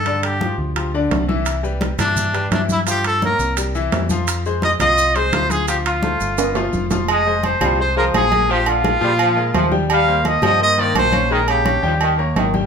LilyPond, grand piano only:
\new Staff \with { instrumentName = "Grand piano" } { \time 4/4 \key f \dorian \tempo 4 = 171 <d d' d''>4 <f f' g'>4 <f f' g'>8 <d d' d''>4 <e e' e''>8~ | <e e' e''>8 <g g' b'>4 <e e' e''>4 <g g' b'>8 <e e' e''>4 | <f f' f''>4 <bes bes' des''>4 <g g' bes'>8 <e e' e''>4 <f f' f''>8~ | <f f' f''>8 <aes aes' c''>4 <f f' f''>4 <aes aes' c''>8 <f f' f''>4 |
<f f' f''>4 <a a' c''>4 <b b' dis''>8 <f f' f''>4 <f f' f''>8 | r8 <aes aes' c''>4 <f f' f''>8 <aes aes' c''>8 <aes aes' c''>4 <aes aes' bes'>8 | <f f' f''>4 <aes aes' bes'>8 <f f' f''>4 <aes aes' bes'>4 <g g' g''>8~ | <g g' g''>8 <bes bes' c''>4 <g g' g''>8 <bes bes' c''>8 <bes bes' c''>4 <des' des'' f''>8 |
<aes aes' aes''>4 <des' des'' f''>8 <g g' g''>4 <bes bes' des''>4 <g g' g''>8 | }